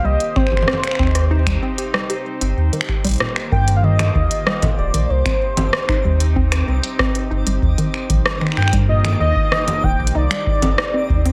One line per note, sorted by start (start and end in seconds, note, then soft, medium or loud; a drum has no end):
0.00 11.32 G4 medium
0.00 11.32 C5 medium
0.04 0.17 C2 loud
0.04 2.57 C3 medium
0.04 0.13 G3 medium
0.04 0.38 D#5 loud
0.18 3.58 C4 medium
0.18 closed hi-hat soft
0.36 0.44 C4 loud
0.36 1.62 C5 medium
0.36 finger snap soft
0.36 kick loud
0.47 finger snap soft
0.52 0.65 G1 medium
0.52 low conga soft
0.57 finger snap soft
0.62 low conga medium
0.68 0.72 C4 medium
0.68 cross-stick loud
0.73 3.58 D#4 medium
0.73 low conga medium
0.84 finger snap medium
0.84 closed hi-hat soft
0.87 finger snap soft
0.91 finger snap soft
0.95 1.58 D#2 loud
0.95 1.07 C4 loud
0.95 finger snap soft
0.95 kick loud
0.99 finger snap soft
1.03 finger snap soft
1.07 finger snap soft
1.11 finger snap soft
1.11 cross-stick medium
1.11 closed hi-hat medium
1.31 1.39 D#4 loud
1.47 1.55 G3 medium
1.47 finger snap medium
1.47 kick loud
1.47 closed hi-hat medium
1.62 1.70 C4 loud
1.78 1.83 G4 medium
1.78 closed hi-hat medium
1.94 1.99 G3 medium
1.94 cross-stick loud
2.10 2.22 G4 medium
2.10 closed hi-hat medium
2.41 2.54 G1 loud
2.41 2.46 C4 medium
2.41 closed hi-hat medium
2.57 2.70 D#2 loud
2.57 5.10 D#3 medium
2.57 11.32 D#4 medium
2.57 11.32 D6 medium
2.73 2.81 D#3 loud
2.73 closed hi-hat soft
2.81 finger snap medium
2.89 5.10 A#3 medium
2.89 finger snap soft
2.89 kick loud
3.04 3.17 A#1 medium
3.04 3.13 G3 loud
3.04 closed hi-hat medium
3.07 closed hi-hat medium
3.09 closed hi-hat soft
3.11 closed hi-hat soft
3.14 closed hi-hat soft
3.18 3.28 A#2 medium
3.18 cross-stick loud
3.18 closed hi-hat soft
3.34 5.10 F4 medium
3.34 finger snap medium
3.52 4.10 G2 loud
3.52 3.60 D#3 loud
3.52 3.75 G5 loud
3.52 kick loud
3.68 closed hi-hat medium
3.77 3.85 F5 medium
3.83 3.88 D#3 medium
3.83 4.14 D#5 loud
3.99 finger snap medium
3.99 cross-stick medium
3.99 closed hi-hat medium
3.99 low conga medium
4.15 4.28 D#2 loud
4.15 4.23 D#3 loud
4.15 4.74 D#5 loud
4.15 kick loud
4.31 closed hi-hat medium
4.47 4.55 G3 loud
4.47 cross-stick loud
4.62 4.70 A#2 medium
4.62 kick loud
4.62 closed hi-hat medium
4.62 low conga medium
4.78 4.91 D#1 loud
4.78 5.11 D5 medium
4.94 5.07 A#1 loud
4.94 5.02 D#3 loud
4.94 closed hi-hat medium
5.10 5.23 C2 loud
5.10 7.62 C3 medium
5.10 6.36 C5 medium
5.26 5.30 C4 medium
5.26 8.63 C4 medium
5.26 finger snap medium
5.26 kick loud
5.26 closed hi-hat soft
5.48 8.63 D#4 medium
5.57 5.70 G1 medium
5.57 5.65 C4 loud
5.57 closed hi-hat medium
5.57 low conga medium
5.73 cross-stick loud
5.89 5.97 D#4 loud
5.89 finger snap medium
5.89 kick loud
6.05 6.63 D#2 loud
6.05 6.13 G3 medium
6.20 closed hi-hat medium
6.36 6.44 C4 loud
6.36 kick loud
6.52 finger snap medium
6.52 cross-stick medium
6.52 closed hi-hat medium
6.68 6.81 C2 loud
6.68 6.72 C4 medium
6.83 closed hi-hat medium
6.99 7.07 C4 loud
6.99 kick loud
6.99 cross-stick loud
7.15 closed hi-hat medium
7.31 7.44 G1 loud
7.31 7.39 D#4 loud
7.47 7.59 G1 loud
7.47 7.55 G3 medium
7.47 closed hi-hat medium
7.62 7.75 D#2 loud
7.62 10.15 D#3 medium
7.62 kick loud
7.78 7.86 D#3 loud
7.78 closed hi-hat soft
7.94 finger snap soft
8.10 8.23 A#1 medium
8.10 8.15 D#3 medium
8.10 10.15 A#3 medium
8.10 kick loud
8.10 closed hi-hat medium
8.19 10.15 F4 medium
8.26 cross-stick loud
8.41 8.49 D#3 loud
8.41 finger snap soft
8.47 finger snap soft
8.52 finger snap soft
8.57 9.16 G2 loud
8.57 8.71 G5 loud
8.57 finger snap soft
8.62 finger snap soft
8.68 finger snap soft
8.73 8.81 G3 loud
8.73 kick loud
8.73 closed hi-hat medium
8.89 8.97 A#2 medium
8.89 9.18 D#5 loud
9.05 finger snap medium
9.05 closed hi-hat medium
9.05 low conga medium
9.20 9.33 D#2 loud
9.20 9.28 D#3 loud
9.20 9.85 D#5 loud
9.36 kick loud
9.52 9.57 D#3 medium
9.52 cross-stick loud
9.68 closed hi-hat medium
9.68 low conga medium
9.83 9.96 D#1 loud
9.83 9.92 D#3 loud
9.83 10.17 G5 loud
9.83 kick loud
9.99 10.12 A#1 loud
10.07 closed hi-hat medium
10.15 10.28 C2 loud
10.15 11.32 C3 medium
10.15 10.23 D#4 loud
10.15 11.32 D5 medium
10.31 10.39 G3 medium
10.31 finger snap medium
10.31 closed hi-hat soft
10.37 11.32 C4 medium
10.47 kick loud
10.62 10.75 G1 medium
10.62 10.70 C4 loud
10.62 closed hi-hat medium
10.62 low conga medium
10.78 cross-stick loud
10.84 11.32 D#4 medium
10.94 10.99 C4 medium
11.10 11.32 D#2 loud
11.10 kick loud
11.26 11.32 C4 loud
11.26 closed hi-hat medium